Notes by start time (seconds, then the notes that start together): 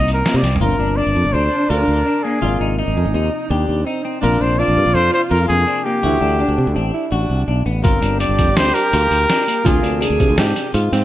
Already playing: C2 C3 F3 A#3 D#4 D#5
0.08 closed hi-hat
0.14 A#4
0.25 A#3, snare, closed hi-hat
0.34 C3 D5
0.43 C2 C4, snare, closed hi-hat
0.56 floor tom
0.60 G1 C3 F3 A#3 D4 F4 A#4
0.79 G1 D4
0.97 D4 D5
1.07 G1
1.16 F2
1.25 G1
1.33 D2 D4 C5
1.70 D2 F4 A#4
1.88 D2
2.06 D4
2.23 A#3 G#4
2.41 G#1 C3 F3 A#3 F4 D5
2.61 G#1 D#4
2.79 D#4
2.88 G#1
2.97 F2
3.05 G#1
3.14 D#2 D#4
3.49 D#2 D4 G4
3.69 D#2
3.86 C4 D#4
4.03 C4 D#4
4.21 A#1 C3 F3 A#3 D4 F4 A#4
4.25 D4
4.41 A#1 D4 C5
4.58 D4 F4 D5
4.68 A#1
4.77 G2
4.86 A#1
4.94 F2 D4 C5
5.14 C5
5.30 F2 F4 A#4
5.48 F2 C3 F3 A#3 D4 G#4
5.67 D4
5.84 A#3 G4
6.03 D2 E3 A3 D4 E4 F#4 F#5
6.21 D2 D4
6.39 D4
6.48 D2
6.58 C3
6.67 D2
6.75 A1 C4 D4
6.93 E4
7.11 A1 D4 F#4
7.30 C2
7.48 B1 D4
7.66 A1 B3
7.82 G1 D3 G3 C4 F4 G4 A#4, kick, closed hi-hat
8.02 G1 D4, closed hi-hat
8.20 D4 D5, closed hi-hat
8.29 G1
8.39 F2, kick, closed hi-hat
8.47 G1
8.56 D2 D4 C5, snare, closed hi-hat
8.74 A#4, closed hi-hat
8.93 D2 F4, closed hi-hat
9.11 D2, closed hi-hat
9.29 D4, snare, closed hi-hat
9.47 A#3, closed hi-hat
9.64 D2 C3 F3 A#3 D4 F4 G#4, kick, closed hi-hat
9.83 D2 D4, closed hi-hat
10.01 D4 G#4, closed hi-hat
10.10 D2
10.20 C3, kick, closed hi-hat
10.30 D2
10.37 G#2 D4 G4, snare, closed hi-hat
10.56 snare, closed hi-hat
10.74 G#2 F4, closed hi-hat
10.92 G#2 C4, snare, closed hi-hat